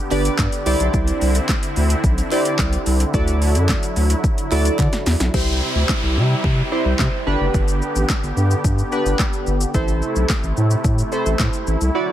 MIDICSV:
0, 0, Header, 1, 6, 480
1, 0, Start_track
1, 0, Tempo, 550459
1, 817, Time_signature, 4, 2, 24, 8
1, 10570, End_track
2, 0, Start_track
2, 0, Title_t, "Synth keys"
2, 0, Program_c, 0, 88
2, 96, Note_on_c, 0, 62, 89
2, 99, Note_on_c, 0, 71, 81
2, 100, Note_on_c, 0, 67, 81
2, 101, Note_on_c, 0, 74, 101
2, 567, Note_off_c, 0, 67, 0
2, 571, Note_off_c, 0, 74, 0
2, 576, Note_on_c, 0, 64, 94
2, 577, Note_off_c, 0, 62, 0
2, 578, Note_off_c, 0, 71, 0
2, 578, Note_on_c, 0, 67, 84
2, 579, Note_on_c, 0, 72, 83
2, 581, Note_on_c, 0, 74, 100
2, 1345, Note_off_c, 0, 64, 0
2, 1346, Note_off_c, 0, 67, 0
2, 1346, Note_off_c, 0, 72, 0
2, 1347, Note_off_c, 0, 74, 0
2, 2019, Note_on_c, 0, 64, 87
2, 2020, Note_on_c, 0, 67, 84
2, 2021, Note_on_c, 0, 72, 80
2, 2023, Note_on_c, 0, 74, 97
2, 2577, Note_off_c, 0, 64, 0
2, 2578, Note_off_c, 0, 67, 0
2, 2578, Note_off_c, 0, 72, 0
2, 2579, Note_off_c, 0, 74, 0
2, 2739, Note_on_c, 0, 64, 89
2, 2739, Note_on_c, 0, 66, 80
2, 2740, Note_on_c, 0, 69, 81
2, 2742, Note_on_c, 0, 74, 93
2, 3484, Note_off_c, 0, 64, 0
2, 3484, Note_off_c, 0, 66, 0
2, 3484, Note_off_c, 0, 69, 0
2, 3485, Note_off_c, 0, 74, 0
2, 3937, Note_on_c, 0, 64, 84
2, 3938, Note_on_c, 0, 66, 79
2, 3938, Note_on_c, 0, 69, 80
2, 3941, Note_on_c, 0, 74, 98
2, 4496, Note_off_c, 0, 64, 0
2, 4497, Note_off_c, 0, 66, 0
2, 4497, Note_off_c, 0, 69, 0
2, 4498, Note_off_c, 0, 74, 0
2, 4656, Note_on_c, 0, 64, 82
2, 4657, Note_on_c, 0, 67, 77
2, 4659, Note_on_c, 0, 72, 91
2, 5402, Note_off_c, 0, 64, 0
2, 5403, Note_off_c, 0, 67, 0
2, 5404, Note_off_c, 0, 72, 0
2, 5858, Note_on_c, 0, 64, 82
2, 5859, Note_on_c, 0, 67, 77
2, 5860, Note_on_c, 0, 72, 91
2, 6327, Note_off_c, 0, 67, 0
2, 6335, Note_on_c, 0, 62, 89
2, 6337, Note_on_c, 0, 67, 81
2, 6338, Note_off_c, 0, 64, 0
2, 6338, Note_on_c, 0, 71, 101
2, 6339, Note_off_c, 0, 72, 0
2, 7104, Note_off_c, 0, 62, 0
2, 7105, Note_off_c, 0, 67, 0
2, 7106, Note_off_c, 0, 71, 0
2, 7777, Note_on_c, 0, 62, 83
2, 7779, Note_on_c, 0, 67, 74
2, 7781, Note_on_c, 0, 71, 94
2, 8336, Note_off_c, 0, 62, 0
2, 8337, Note_off_c, 0, 67, 0
2, 8338, Note_off_c, 0, 71, 0
2, 8497, Note_on_c, 0, 64, 84
2, 8500, Note_on_c, 0, 69, 82
2, 8501, Note_on_c, 0, 72, 94
2, 9242, Note_off_c, 0, 64, 0
2, 9244, Note_off_c, 0, 69, 0
2, 9245, Note_off_c, 0, 72, 0
2, 9696, Note_on_c, 0, 64, 82
2, 9697, Note_on_c, 0, 69, 74
2, 9701, Note_on_c, 0, 72, 93
2, 10256, Note_off_c, 0, 64, 0
2, 10256, Note_off_c, 0, 69, 0
2, 10258, Note_off_c, 0, 72, 0
2, 10417, Note_on_c, 0, 64, 85
2, 10420, Note_on_c, 0, 66, 78
2, 10421, Note_on_c, 0, 74, 94
2, 10570, Note_off_c, 0, 64, 0
2, 10570, Note_off_c, 0, 66, 0
2, 10570, Note_off_c, 0, 74, 0
2, 10570, End_track
3, 0, Start_track
3, 0, Title_t, "Supersaw synth"
3, 0, Program_c, 1, 81
3, 0, Note_on_c, 1, 50, 84
3, 0, Note_on_c, 1, 59, 80
3, 0, Note_on_c, 1, 67, 92
3, 543, Note_off_c, 1, 59, 0
3, 543, Note_off_c, 1, 67, 0
3, 576, Note_on_c, 1, 64, 97
3, 578, Note_on_c, 1, 60, 80
3, 2715, Note_off_c, 1, 64, 0
3, 2716, Note_off_c, 1, 60, 0
3, 2734, Note_on_c, 1, 64, 96
3, 2735, Note_on_c, 1, 54, 79
3, 4623, Note_off_c, 1, 50, 0
3, 4636, Note_off_c, 1, 64, 0
3, 4637, Note_off_c, 1, 54, 0
3, 4655, Note_on_c, 1, 55, 77
3, 4655, Note_on_c, 1, 64, 95
3, 4657, Note_on_c, 1, 48, 80
3, 6319, Note_off_c, 1, 55, 0
3, 6319, Note_off_c, 1, 64, 0
3, 6320, Note_off_c, 1, 48, 0
3, 6337, Note_on_c, 1, 67, 89
3, 6338, Note_on_c, 1, 50, 82
3, 6339, Note_on_c, 1, 59, 74
3, 8476, Note_off_c, 1, 50, 0
3, 8476, Note_off_c, 1, 67, 0
3, 8477, Note_off_c, 1, 59, 0
3, 8499, Note_on_c, 1, 48, 85
3, 8499, Note_on_c, 1, 57, 79
3, 8499, Note_on_c, 1, 64, 88
3, 10399, Note_off_c, 1, 48, 0
3, 10399, Note_off_c, 1, 57, 0
3, 10417, Note_on_c, 1, 50, 86
3, 10418, Note_on_c, 1, 54, 77
3, 10570, Note_off_c, 1, 50, 0
3, 10570, Note_off_c, 1, 54, 0
3, 10570, Note_off_c, 1, 64, 0
3, 10570, End_track
4, 0, Start_track
4, 0, Title_t, "Sub bass"
4, 0, Program_c, 2, 38
4, 98, Note_on_c, 2, 31, 91
4, 256, Note_off_c, 2, 31, 0
4, 337, Note_on_c, 2, 43, 97
4, 417, Note_off_c, 2, 43, 0
4, 577, Note_on_c, 2, 36, 115
4, 656, Note_off_c, 2, 36, 0
4, 698, Note_on_c, 2, 35, 93
4, 777, Note_off_c, 2, 35, 0
4, 817, Note_on_c, 2, 36, 112
4, 975, Note_off_c, 2, 36, 0
4, 1059, Note_on_c, 2, 36, 105
4, 1217, Note_off_c, 2, 36, 0
4, 1541, Note_on_c, 2, 38, 97
4, 1698, Note_off_c, 2, 38, 0
4, 1777, Note_on_c, 2, 35, 104
4, 1936, Note_off_c, 2, 35, 0
4, 2258, Note_on_c, 2, 36, 96
4, 2416, Note_off_c, 2, 36, 0
4, 2497, Note_on_c, 2, 36, 98
4, 2656, Note_off_c, 2, 36, 0
4, 2736, Note_on_c, 2, 38, 112
4, 3097, Note_on_c, 2, 42, 99
4, 3110, Note_off_c, 2, 38, 0
4, 3255, Note_off_c, 2, 42, 0
4, 3457, Note_on_c, 2, 38, 91
4, 3616, Note_off_c, 2, 38, 0
4, 3937, Note_on_c, 2, 38, 96
4, 4096, Note_off_c, 2, 38, 0
4, 4176, Note_on_c, 2, 50, 102
4, 4256, Note_off_c, 2, 50, 0
4, 4416, Note_on_c, 2, 40, 91
4, 4496, Note_off_c, 2, 40, 0
4, 4537, Note_on_c, 2, 35, 87
4, 4617, Note_off_c, 2, 35, 0
4, 4656, Note_on_c, 2, 36, 107
4, 4895, Note_off_c, 2, 36, 0
4, 5015, Note_on_c, 2, 38, 95
4, 5095, Note_off_c, 2, 38, 0
4, 5258, Note_on_c, 2, 36, 103
4, 5377, Note_on_c, 2, 48, 98
4, 5390, Note_off_c, 2, 36, 0
4, 5536, Note_off_c, 2, 48, 0
4, 5617, Note_on_c, 2, 48, 102
4, 5776, Note_off_c, 2, 48, 0
4, 5975, Note_on_c, 2, 36, 84
4, 6055, Note_off_c, 2, 36, 0
4, 6097, Note_on_c, 2, 48, 94
4, 6176, Note_off_c, 2, 48, 0
4, 6337, Note_on_c, 2, 31, 98
4, 6416, Note_off_c, 2, 31, 0
4, 6457, Note_on_c, 2, 30, 87
4, 6536, Note_off_c, 2, 30, 0
4, 6578, Note_on_c, 2, 31, 107
4, 6816, Note_off_c, 2, 31, 0
4, 6937, Note_on_c, 2, 33, 91
4, 7016, Note_off_c, 2, 33, 0
4, 7178, Note_on_c, 2, 31, 92
4, 7257, Note_off_c, 2, 31, 0
4, 7295, Note_on_c, 2, 43, 99
4, 7454, Note_off_c, 2, 43, 0
4, 7538, Note_on_c, 2, 43, 106
4, 7696, Note_off_c, 2, 43, 0
4, 7896, Note_on_c, 2, 31, 81
4, 7976, Note_off_c, 2, 31, 0
4, 8257, Note_on_c, 2, 31, 95
4, 8416, Note_off_c, 2, 31, 0
4, 8497, Note_on_c, 2, 33, 109
4, 8735, Note_off_c, 2, 33, 0
4, 8858, Note_on_c, 2, 35, 87
4, 8937, Note_off_c, 2, 35, 0
4, 9098, Note_on_c, 2, 33, 105
4, 9177, Note_off_c, 2, 33, 0
4, 9219, Note_on_c, 2, 45, 105
4, 9377, Note_off_c, 2, 45, 0
4, 9457, Note_on_c, 2, 45, 104
4, 9615, Note_off_c, 2, 45, 0
4, 9818, Note_on_c, 2, 33, 83
4, 9897, Note_off_c, 2, 33, 0
4, 9937, Note_on_c, 2, 45, 99
4, 10016, Note_off_c, 2, 45, 0
4, 10178, Note_on_c, 2, 33, 94
4, 10257, Note_off_c, 2, 33, 0
4, 10299, Note_on_c, 2, 36, 85
4, 10378, Note_off_c, 2, 36, 0
4, 10570, End_track
5, 0, Start_track
5, 0, Title_t, "Downlifter"
5, 0, Program_c, 3, 103
5, 4657, Note_on_c, 3, 60, 78
5, 8497, Note_off_c, 3, 60, 0
5, 10570, End_track
6, 0, Start_track
6, 0, Title_t, "Drums"
6, 98, Note_on_c, 9, 39, 62
6, 98, Note_on_c, 9, 46, 67
6, 98, Note_on_c, 9, 82, 51
6, 185, Note_off_c, 9, 39, 0
6, 185, Note_off_c, 9, 46, 0
6, 185, Note_off_c, 9, 82, 0
6, 219, Note_on_c, 9, 42, 75
6, 219, Note_on_c, 9, 82, 74
6, 307, Note_off_c, 9, 42, 0
6, 307, Note_off_c, 9, 82, 0
6, 337, Note_on_c, 9, 36, 111
6, 337, Note_on_c, 9, 39, 113
6, 338, Note_on_c, 9, 82, 73
6, 339, Note_off_c, 9, 39, 0
6, 339, Note_on_c, 9, 39, 93
6, 344, Note_on_c, 9, 38, 85
6, 424, Note_off_c, 9, 36, 0
6, 425, Note_off_c, 9, 82, 0
6, 427, Note_off_c, 9, 39, 0
6, 431, Note_off_c, 9, 38, 0
6, 458, Note_on_c, 9, 42, 58
6, 458, Note_on_c, 9, 82, 60
6, 545, Note_off_c, 9, 42, 0
6, 545, Note_off_c, 9, 82, 0
6, 576, Note_on_c, 9, 46, 87
6, 576, Note_on_c, 9, 82, 63
6, 664, Note_off_c, 9, 46, 0
6, 664, Note_off_c, 9, 82, 0
6, 699, Note_on_c, 9, 42, 78
6, 699, Note_on_c, 9, 82, 77
6, 786, Note_off_c, 9, 42, 0
6, 786, Note_off_c, 9, 82, 0
6, 817, Note_on_c, 9, 82, 75
6, 818, Note_on_c, 9, 36, 116
6, 904, Note_off_c, 9, 82, 0
6, 905, Note_off_c, 9, 36, 0
6, 938, Note_on_c, 9, 42, 60
6, 938, Note_on_c, 9, 82, 59
6, 1025, Note_off_c, 9, 42, 0
6, 1025, Note_off_c, 9, 82, 0
6, 1059, Note_on_c, 9, 46, 71
6, 1059, Note_on_c, 9, 82, 52
6, 1146, Note_off_c, 9, 46, 0
6, 1146, Note_off_c, 9, 82, 0
6, 1177, Note_on_c, 9, 42, 78
6, 1177, Note_on_c, 9, 82, 78
6, 1264, Note_off_c, 9, 42, 0
6, 1264, Note_off_c, 9, 82, 0
6, 1298, Note_on_c, 9, 39, 98
6, 1298, Note_on_c, 9, 82, 89
6, 1299, Note_on_c, 9, 36, 127
6, 1300, Note_off_c, 9, 39, 0
6, 1300, Note_on_c, 9, 39, 120
6, 1307, Note_on_c, 9, 38, 99
6, 1385, Note_off_c, 9, 82, 0
6, 1386, Note_off_c, 9, 36, 0
6, 1387, Note_off_c, 9, 39, 0
6, 1394, Note_off_c, 9, 38, 0
6, 1420, Note_on_c, 9, 42, 64
6, 1420, Note_on_c, 9, 82, 59
6, 1507, Note_off_c, 9, 42, 0
6, 1507, Note_off_c, 9, 82, 0
6, 1537, Note_on_c, 9, 46, 81
6, 1537, Note_on_c, 9, 82, 60
6, 1624, Note_off_c, 9, 46, 0
6, 1624, Note_off_c, 9, 82, 0
6, 1658, Note_on_c, 9, 42, 88
6, 1658, Note_on_c, 9, 82, 86
6, 1745, Note_off_c, 9, 42, 0
6, 1745, Note_off_c, 9, 82, 0
6, 1777, Note_on_c, 9, 36, 121
6, 1779, Note_on_c, 9, 82, 83
6, 1864, Note_off_c, 9, 36, 0
6, 1866, Note_off_c, 9, 82, 0
6, 1901, Note_on_c, 9, 42, 56
6, 1901, Note_on_c, 9, 82, 57
6, 1988, Note_off_c, 9, 42, 0
6, 1988, Note_off_c, 9, 82, 0
6, 2018, Note_on_c, 9, 39, 67
6, 2018, Note_on_c, 9, 46, 69
6, 2018, Note_on_c, 9, 82, 52
6, 2105, Note_off_c, 9, 39, 0
6, 2105, Note_off_c, 9, 46, 0
6, 2105, Note_off_c, 9, 82, 0
6, 2139, Note_on_c, 9, 42, 74
6, 2139, Note_on_c, 9, 82, 76
6, 2227, Note_off_c, 9, 42, 0
6, 2227, Note_off_c, 9, 82, 0
6, 2257, Note_on_c, 9, 36, 100
6, 2258, Note_on_c, 9, 39, 112
6, 2259, Note_off_c, 9, 39, 0
6, 2259, Note_on_c, 9, 39, 94
6, 2259, Note_on_c, 9, 82, 75
6, 2265, Note_on_c, 9, 38, 85
6, 2344, Note_off_c, 9, 36, 0
6, 2346, Note_off_c, 9, 39, 0
6, 2346, Note_off_c, 9, 82, 0
6, 2352, Note_off_c, 9, 38, 0
6, 2378, Note_on_c, 9, 42, 59
6, 2378, Note_on_c, 9, 82, 60
6, 2465, Note_off_c, 9, 42, 0
6, 2465, Note_off_c, 9, 82, 0
6, 2496, Note_on_c, 9, 46, 84
6, 2496, Note_on_c, 9, 82, 61
6, 2583, Note_off_c, 9, 46, 0
6, 2583, Note_off_c, 9, 82, 0
6, 2618, Note_on_c, 9, 42, 76
6, 2618, Note_on_c, 9, 82, 78
6, 2705, Note_off_c, 9, 42, 0
6, 2705, Note_off_c, 9, 82, 0
6, 2737, Note_on_c, 9, 36, 123
6, 2737, Note_on_c, 9, 82, 76
6, 2824, Note_off_c, 9, 36, 0
6, 2824, Note_off_c, 9, 82, 0
6, 2857, Note_on_c, 9, 42, 60
6, 2857, Note_on_c, 9, 82, 62
6, 2944, Note_off_c, 9, 42, 0
6, 2944, Note_off_c, 9, 82, 0
6, 2980, Note_on_c, 9, 46, 74
6, 2980, Note_on_c, 9, 82, 52
6, 3067, Note_off_c, 9, 46, 0
6, 3067, Note_off_c, 9, 82, 0
6, 3097, Note_on_c, 9, 42, 74
6, 3097, Note_on_c, 9, 82, 78
6, 3185, Note_off_c, 9, 42, 0
6, 3185, Note_off_c, 9, 82, 0
6, 3216, Note_on_c, 9, 82, 94
6, 3217, Note_on_c, 9, 39, 101
6, 3218, Note_on_c, 9, 36, 125
6, 3219, Note_off_c, 9, 39, 0
6, 3219, Note_on_c, 9, 39, 123
6, 3226, Note_on_c, 9, 38, 102
6, 3304, Note_off_c, 9, 82, 0
6, 3306, Note_off_c, 9, 36, 0
6, 3306, Note_off_c, 9, 39, 0
6, 3313, Note_off_c, 9, 38, 0
6, 3339, Note_on_c, 9, 42, 61
6, 3339, Note_on_c, 9, 82, 61
6, 3426, Note_off_c, 9, 42, 0
6, 3426, Note_off_c, 9, 82, 0
6, 3456, Note_on_c, 9, 46, 79
6, 3456, Note_on_c, 9, 82, 57
6, 3543, Note_off_c, 9, 46, 0
6, 3543, Note_off_c, 9, 82, 0
6, 3576, Note_on_c, 9, 42, 83
6, 3576, Note_on_c, 9, 82, 88
6, 3663, Note_off_c, 9, 42, 0
6, 3663, Note_off_c, 9, 82, 0
6, 3696, Note_on_c, 9, 36, 125
6, 3697, Note_on_c, 9, 82, 81
6, 3783, Note_off_c, 9, 36, 0
6, 3785, Note_off_c, 9, 82, 0
6, 3819, Note_on_c, 9, 42, 56
6, 3819, Note_on_c, 9, 82, 57
6, 3907, Note_off_c, 9, 42, 0
6, 3907, Note_off_c, 9, 82, 0
6, 3937, Note_on_c, 9, 39, 65
6, 3937, Note_on_c, 9, 46, 72
6, 3937, Note_on_c, 9, 82, 49
6, 4024, Note_off_c, 9, 39, 0
6, 4024, Note_off_c, 9, 46, 0
6, 4024, Note_off_c, 9, 82, 0
6, 4058, Note_on_c, 9, 42, 75
6, 4058, Note_on_c, 9, 82, 75
6, 4145, Note_off_c, 9, 42, 0
6, 4145, Note_off_c, 9, 82, 0
6, 4176, Note_on_c, 9, 36, 104
6, 4176, Note_on_c, 9, 38, 59
6, 4176, Note_on_c, 9, 82, 69
6, 4177, Note_on_c, 9, 39, 94
6, 4263, Note_off_c, 9, 36, 0
6, 4263, Note_off_c, 9, 38, 0
6, 4263, Note_off_c, 9, 82, 0
6, 4264, Note_off_c, 9, 39, 0
6, 4296, Note_on_c, 9, 42, 58
6, 4296, Note_on_c, 9, 82, 59
6, 4297, Note_on_c, 9, 38, 67
6, 4384, Note_off_c, 9, 38, 0
6, 4384, Note_off_c, 9, 42, 0
6, 4384, Note_off_c, 9, 82, 0
6, 4414, Note_on_c, 9, 46, 84
6, 4414, Note_on_c, 9, 82, 61
6, 4416, Note_on_c, 9, 38, 100
6, 4501, Note_off_c, 9, 46, 0
6, 4501, Note_off_c, 9, 82, 0
6, 4504, Note_off_c, 9, 38, 0
6, 4536, Note_on_c, 9, 38, 95
6, 4537, Note_on_c, 9, 42, 76
6, 4537, Note_on_c, 9, 82, 77
6, 4624, Note_off_c, 9, 38, 0
6, 4624, Note_off_c, 9, 42, 0
6, 4624, Note_off_c, 9, 82, 0
6, 4656, Note_on_c, 9, 36, 116
6, 4656, Note_on_c, 9, 49, 88
6, 4743, Note_off_c, 9, 49, 0
6, 4744, Note_off_c, 9, 36, 0
6, 5138, Note_on_c, 9, 36, 118
6, 5139, Note_on_c, 9, 39, 115
6, 5145, Note_on_c, 9, 38, 98
6, 5225, Note_off_c, 9, 36, 0
6, 5226, Note_off_c, 9, 39, 0
6, 5233, Note_off_c, 9, 38, 0
6, 5616, Note_on_c, 9, 36, 117
6, 5703, Note_off_c, 9, 36, 0
6, 6097, Note_on_c, 9, 36, 98
6, 6097, Note_on_c, 9, 39, 104
6, 6104, Note_on_c, 9, 38, 86
6, 6184, Note_off_c, 9, 36, 0
6, 6185, Note_off_c, 9, 39, 0
6, 6191, Note_off_c, 9, 38, 0
6, 6577, Note_on_c, 9, 82, 71
6, 6578, Note_on_c, 9, 36, 113
6, 6664, Note_off_c, 9, 82, 0
6, 6665, Note_off_c, 9, 36, 0
6, 6697, Note_on_c, 9, 82, 59
6, 6784, Note_off_c, 9, 82, 0
6, 6819, Note_on_c, 9, 82, 51
6, 6906, Note_off_c, 9, 82, 0
6, 6938, Note_on_c, 9, 82, 72
6, 7025, Note_off_c, 9, 82, 0
6, 7059, Note_on_c, 9, 82, 85
6, 7060, Note_on_c, 9, 36, 115
6, 7061, Note_on_c, 9, 39, 121
6, 7068, Note_on_c, 9, 38, 100
6, 7146, Note_off_c, 9, 82, 0
6, 7147, Note_off_c, 9, 36, 0
6, 7148, Note_off_c, 9, 39, 0
6, 7155, Note_off_c, 9, 38, 0
6, 7182, Note_on_c, 9, 82, 58
6, 7269, Note_off_c, 9, 82, 0
6, 7300, Note_on_c, 9, 82, 55
6, 7387, Note_off_c, 9, 82, 0
6, 7418, Note_on_c, 9, 82, 82
6, 7505, Note_off_c, 9, 82, 0
6, 7538, Note_on_c, 9, 36, 115
6, 7539, Note_on_c, 9, 82, 79
6, 7625, Note_off_c, 9, 36, 0
6, 7626, Note_off_c, 9, 82, 0
6, 7660, Note_on_c, 9, 82, 52
6, 7748, Note_off_c, 9, 82, 0
6, 7778, Note_on_c, 9, 82, 49
6, 7865, Note_off_c, 9, 82, 0
6, 7899, Note_on_c, 9, 82, 70
6, 7986, Note_off_c, 9, 82, 0
6, 8016, Note_on_c, 9, 39, 107
6, 8017, Note_on_c, 9, 36, 104
6, 8017, Note_on_c, 9, 82, 69
6, 8023, Note_on_c, 9, 38, 83
6, 8103, Note_off_c, 9, 39, 0
6, 8104, Note_off_c, 9, 36, 0
6, 8104, Note_off_c, 9, 82, 0
6, 8110, Note_off_c, 9, 38, 0
6, 8137, Note_on_c, 9, 82, 55
6, 8224, Note_off_c, 9, 82, 0
6, 8255, Note_on_c, 9, 82, 58
6, 8342, Note_off_c, 9, 82, 0
6, 8377, Note_on_c, 9, 82, 75
6, 8464, Note_off_c, 9, 82, 0
6, 8496, Note_on_c, 9, 82, 73
6, 8497, Note_on_c, 9, 36, 115
6, 8583, Note_off_c, 9, 82, 0
6, 8584, Note_off_c, 9, 36, 0
6, 8615, Note_on_c, 9, 82, 60
6, 8702, Note_off_c, 9, 82, 0
6, 8738, Note_on_c, 9, 82, 49
6, 8826, Note_off_c, 9, 82, 0
6, 8857, Note_on_c, 9, 82, 73
6, 8944, Note_off_c, 9, 82, 0
6, 8976, Note_on_c, 9, 82, 84
6, 8979, Note_on_c, 9, 36, 120
6, 8979, Note_on_c, 9, 39, 122
6, 8985, Note_on_c, 9, 38, 96
6, 9063, Note_off_c, 9, 82, 0
6, 9066, Note_off_c, 9, 36, 0
6, 9066, Note_off_c, 9, 39, 0
6, 9072, Note_off_c, 9, 38, 0
6, 9099, Note_on_c, 9, 82, 58
6, 9186, Note_off_c, 9, 82, 0
6, 9216, Note_on_c, 9, 82, 57
6, 9303, Note_off_c, 9, 82, 0
6, 9334, Note_on_c, 9, 82, 83
6, 9422, Note_off_c, 9, 82, 0
6, 9456, Note_on_c, 9, 36, 118
6, 9456, Note_on_c, 9, 82, 75
6, 9544, Note_off_c, 9, 36, 0
6, 9544, Note_off_c, 9, 82, 0
6, 9578, Note_on_c, 9, 82, 55
6, 9665, Note_off_c, 9, 82, 0
6, 9696, Note_on_c, 9, 82, 48
6, 9783, Note_off_c, 9, 82, 0
6, 9818, Note_on_c, 9, 82, 74
6, 9906, Note_off_c, 9, 82, 0
6, 9936, Note_on_c, 9, 39, 107
6, 9937, Note_on_c, 9, 36, 103
6, 9937, Note_on_c, 9, 82, 68
6, 9943, Note_on_c, 9, 38, 81
6, 10024, Note_off_c, 9, 36, 0
6, 10024, Note_off_c, 9, 39, 0
6, 10024, Note_off_c, 9, 82, 0
6, 10030, Note_off_c, 9, 38, 0
6, 10056, Note_on_c, 9, 82, 52
6, 10143, Note_off_c, 9, 82, 0
6, 10176, Note_on_c, 9, 82, 58
6, 10263, Note_off_c, 9, 82, 0
6, 10298, Note_on_c, 9, 82, 74
6, 10385, Note_off_c, 9, 82, 0
6, 10570, End_track
0, 0, End_of_file